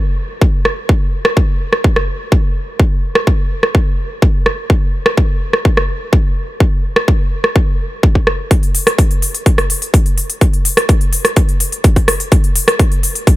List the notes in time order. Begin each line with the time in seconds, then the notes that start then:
0.41 kick
0.65 cross-stick
0.89 kick
1.25 cross-stick
1.37 kick
1.73 cross-stick
1.84 kick
1.96 cross-stick
2.32 kick
2.80 kick
3.15 cross-stick
3.27 kick
3.63 cross-stick
3.75 kick
4.22 kick
4.46 cross-stick
4.70 kick
5.06 cross-stick
5.17 kick
5.53 cross-stick
5.65 kick
5.77 cross-stick
6.13 kick
6.60 kick
6.96 cross-stick
7.08 kick
7.44 cross-stick
7.56 kick
8.03 kick
8.15 kick
8.27 cross-stick
8.51 kick, closed hi-hat
8.63 closed hi-hat
8.75 open hi-hat
8.87 cross-stick, closed hi-hat
8.98 kick, closed hi-hat
9.11 closed hi-hat
9.22 open hi-hat
9.34 closed hi-hat
9.46 kick, closed hi-hat
9.58 cross-stick, closed hi-hat
9.70 open hi-hat
9.82 closed hi-hat
9.94 kick, closed hi-hat
10.06 closed hi-hat
10.18 open hi-hat
10.30 closed hi-hat
10.41 kick, closed hi-hat
10.53 closed hi-hat
10.65 open hi-hat
10.77 cross-stick, closed hi-hat
10.89 kick, closed hi-hat
11.01 closed hi-hat
11.13 open hi-hat
11.25 cross-stick, closed hi-hat
11.36 kick, closed hi-hat
11.49 closed hi-hat
11.60 open hi-hat
11.72 closed hi-hat
11.84 kick, closed hi-hat
11.96 kick, closed hi-hat
12.08 cross-stick, open hi-hat
12.20 closed hi-hat
12.32 kick, closed hi-hat
12.44 closed hi-hat
12.56 open hi-hat
12.68 cross-stick, closed hi-hat
12.79 kick, closed hi-hat
12.92 closed hi-hat
13.03 open hi-hat
13.15 closed hi-hat
13.27 kick, closed hi-hat